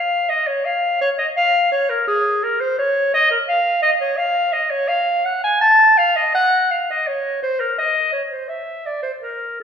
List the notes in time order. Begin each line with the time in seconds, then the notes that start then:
Already playing: F5
0.29 D#5
0.47 C#5
0.65 F5
1.01 C#5
1.18 D#5
1.36 F5
1.72 C#5
1.89 A#4
2.08 G#4
2.43 A#4
2.60 C5
2.78 C#5
3.14 D#5
3.31 A#4
3.49 F5
3.82 D#5
4.00 C#5
4.17 F5
4.52 D#5
4.71 C#5
4.88 F5
5.25 F#5
5.44 G#5
5.61 A5
5.97 F5
6.16 D#5
6.34 F#5
6.71 F5
6.90 D#5
7.07 C#5
7.42 C5
7.60 A#4
7.78 D#5
8.13 C#5
8.31 C5
8.48 E5
8.86 D5
9.03 C5
9.21 A#4
9.60 A4